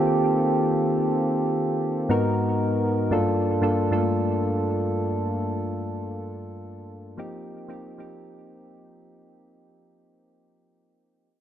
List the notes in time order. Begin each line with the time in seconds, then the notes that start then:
Already playing: D#3 A#3 C4 F4 G4 A4
2.09 G#2 B3 D#4 F#4 A#4
3.11 G2 A#3 D4 F4 A4
3.61 G2 A#3 D4 F4 A4
3.91 G2 A3 D4 F4 A4
3.98 A#3
7.17 F3 A#3 C4 D#4 G4
7.68 F3 A#3 C4 D#4 G4
7.98 F3 A#3 C4 D#4 G4